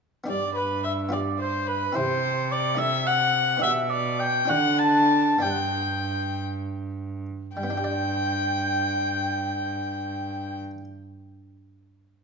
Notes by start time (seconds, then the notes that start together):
0.24 B3 D4 G4
0.28 G2 D5
0.55 B4
0.84 E5
1.09 B3 F4 G4 D5
1.14 D5
1.40 C5
1.67 B4
1.92 C4 E4 G4 C5
1.97 C3
2.51 D5
2.75 A3 D4 A4 E5
2.80 E5
3.07 F#5
3.57 B3 D4 G4
3.62 B2 E5
3.90 D5
4.20 G5
4.45 C4 D4 F#4 F#5
4.49 D3
4.79 A5
5.39 B3 D4 G4 G5
5.43 G2
5.51 F#5
5.59 G5
7.56 G2 G3 G5
7.64 B3
7.70 D4
7.77 G4
7.84 D5